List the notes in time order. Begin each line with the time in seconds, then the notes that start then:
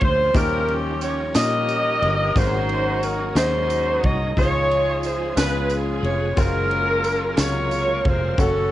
Already playing: C#3 F3 G#3 A#3 C#4 F4 G#4 C6
0.01 D2 C5, kick, ride
0.33 D#2 D#3 F#3 A#3 C#4 D#4 F4 G4 A#4 C5, kick, ride, tambourine
0.40 G3
0.68 ride
1.01 C#5, ride, tambourine
1.34 A#2 G3 C#4 D#4 F4 G4 A#4 D#5, snare, ride, tambourine
1.68 ride, tambourine
2.02 G1, ride
2.35 G#1 G#2 F#3 G#3 A#3 C4 D#4 F#4 G#4 A#4 C5, kick, ride, tambourine
2.42 C#4
2.69 ride
3.03 A#4, ride, tambourine
3.35 D#2 G#3 C#4 D#4 F#4 C5 D#5, snare, ride, tambourine
3.70 ride, tambourine
4.03 C2 D#5, kick, ride
4.36 C#2 C#3 F3 G#3 C#4 D#4 F4 G#4 C#5 C6, kick, ride, tambourine
4.71 ride
5.03 C5, ride, tambourine
5.36 C#2 C#3 G#3 B3 C#4 F4 G#4 A#4 B4, snare, ride, tambourine
5.45 B4
5.69 ride, tambourine
6.03 F1 C#5, ride
6.36 F#1 F#3 G#3 A#3 C#4 F4 G#4 A#4 C5, kick, ride, tambourine
6.71 ride
7.04 ride, tambourine
7.37 C#2 C3 F#3 G#3 F4 A#4 C#5, snare, ride, tambourine
7.71 ride, tambourine
8.05 F1 C5, kick, ride
8.38 F#1 F#3 A3 C#4 F#4 A4, kick, ride, tambourine